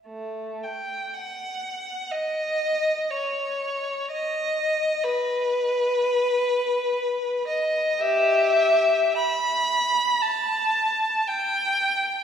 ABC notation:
X:1
M:4/4
L:1/8
Q:1/4=59
K:Bphr
V:1 name="Violin"
A, g f2 ^d2 ^c2 | ^d2 B4- B d | [Ge]2 b2 a2 g2 |]